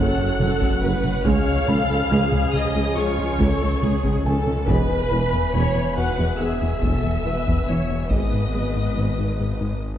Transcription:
Already playing: F#1 A3 C#4 F#4 A4 C#5 F#5 F#6
0.18 F#2
0.40 F#1 F#2 F#3 A4, taiko mid
0.61 F#2, taiko
0.82 F#1 F#2 F#3 B4
1.04 F#2, taiko mid
1.25 C#2 C#3 F3 G#3 C#4 G#4 C#5 F5 G#5 F6, taiko
1.48 C#2
1.68 C#2 C#3 A4 B5, taiko mid
1.90 C#2
2.11 C#2 G#4
2.32 C#2, taiko mid
2.53 C#2 D#5 D#6, taiko mid
2.76 C#2
2.97 C#2 C#3 G#3 C#4 F4 G#4 C#5 C#6
3.19 C#2
3.39 C#2 A4, taiko
3.62 C#2
3.82 C#2 C#3 G#4, taiko mid
4.04 C#2, taiko
4.25 C#2 C#3 A4 G#5
4.46 C#2, taiko mid
4.68 E1 E2 G#2 E3 G#3 B3 G#4 B4 E5 G#5 B5, taiko
4.90 E2
5.11 E1 E2 E3
5.33 E2
5.54 E1 E2 C#5
5.76 E2
5.96 E2 F#4 B4 F#5 F#6
6.19 E2
6.39 E2 G#2 G#3 B3 G#4 E5 E6
6.62 E2
6.82 E1 E2 A4, taiko
7.04 E2
7.25 E1 E2 E3 B4
7.47 E2, taiko
7.68 E1 E2 E3 C#5
7.90 E2
8.09 G#1 G#2 G#3 B3 G#4 B4 D#5 D#6, taiko
8.34 G#2
8.54 G#1 G#2 G#3
8.75 G#2
8.96 G#1 G#2
9.18 G#2
9.40 G#2
9.61 G#2

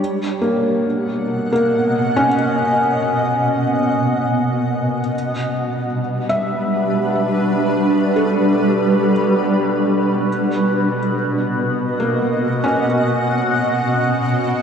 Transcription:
Already playing: B2 C#5
0.00 B2 F#4
0.19 F#5
0.41 A#3
0.81 D#5
1.52 A#3
2.16 C#4
5.14 G3
5.40 B4
5.53 D4
6.29 E5
8.16 A4
10.28 B2
10.92 D#5
11.40 F#5
12.00 A#3 B3
12.64 A#3 C#4

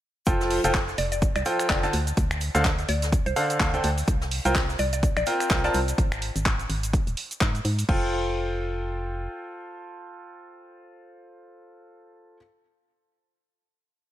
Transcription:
0.26 F1 F3 F4 A4 C5 G5, kick, closed hi-hat, cabasa, shaker
0.41 snare, cabasa
0.50 open hi-hat
0.64 F1 F3 F4 A4 C5 G5, closed hi-hat, cabasa
0.74 kick, snare, clap, closed hi-hat, cabasa, shaker
0.87 snare, cabasa
0.98 F1 D5, open hi-hat, shaker
1.12 D5, closed hi-hat, cabasa
1.22 kick, closed hi-hat, cabasa, shaker
1.36 C2 D5, finger snap, closed hi-hat, cabasa
1.45 F3 F4 A4 C5 G5, open hi-hat, shaker
1.59 finger snap, closed hi-hat, cabasa
1.69 F1 D3 F4 A4 D5 G5, kick, snare, clap, closed hi-hat, cabasa, shaker
1.83 D3 F4 A4 C5 D5 A5, snare, closed hi-hat, cabasa
1.93 D2, open hi-hat, shaker
2.07 closed hi-hat, cabasa
2.17 D2, kick, closed hi-hat, cabasa, shaker
2.31 finger snap, closed hi-hat, cabasa
2.41 open hi-hat, shaker
2.55 D2 D3 D4 A4 C5 F5, snare, closed hi-hat, cabasa
2.64 kick, snare, clap, closed hi-hat, cabasa, shaker
2.79 closed hi-hat, cabasa
2.89 D2 D5, open hi-hat, shaker
3.02 snare, closed hi-hat, cabasa
3.12 kick, closed hi-hat, cabasa, shaker
3.26 C2 C5, closed hi-hat, cabasa
3.36 D3 D4 A4 C5 F5, open hi-hat, shaker
3.50 closed hi-hat, cabasa
3.60 D2 D3 D4 A4 C5 F5, kick, snare, clap, closed hi-hat, cabasa, shaker
3.74 D3 D4 A4 C5 G5, closed hi-hat, cabasa
3.84 D2, open hi-hat, shaker
3.98 open hi-hat, cabasa
4.08 C2, kick, closed hi-hat, cabasa, shaker
4.21 snare, cabasa
4.31 open hi-hat
4.45 C2 C4 F4 A#4 C5 G5, closed hi-hat, cabasa
4.55 kick, snare, clap, closed hi-hat, cabasa, shaker
4.69 snare, cabasa
4.79 C2 D5, open hi-hat, shaker
4.93 D5, closed hi-hat, cabasa
5.03 kick, closed hi-hat, cabasa, shaker
5.17 A#1 D5, finger snap, closed hi-hat, cabasa
5.26 C4 F4 A#4 C5 G5, open hi-hat, shaker
5.40 finger snap, closed hi-hat, cabasa
5.50 C2 C4 F4 A#4 C5 G5, kick, snare, clap, closed hi-hat, cabasa, shaker
5.64 C4 F4 A#4 C5 D5 A5, snare, closed hi-hat, cabasa
5.74 C2, open hi-hat, shaker
5.88 closed hi-hat, cabasa
5.98 G#1, kick, closed hi-hat, cabasa
6.12 finger snap, closed hi-hat, cabasa
6.22 open hi-hat
6.36 G#1, closed hi-hat, cabasa
6.46 kick, clap, closed hi-hat, cabasa
6.59 closed hi-hat, cabasa
6.69 G#1, open hi-hat
6.83 closed hi-hat, cabasa
6.93 kick, closed hi-hat, cabasa
7.07 D#1, closed hi-hat, cabasa
7.17 open hi-hat
7.31 closed hi-hat, cabasa
7.41 G#2, kick, clap, closed hi-hat, cabasa
7.55 closed hi-hat, cabasa
7.65 G#2, open hi-hat
7.79 open hi-hat, cabasa
7.89 F1 F4 A4 C5 G5, kick, crash

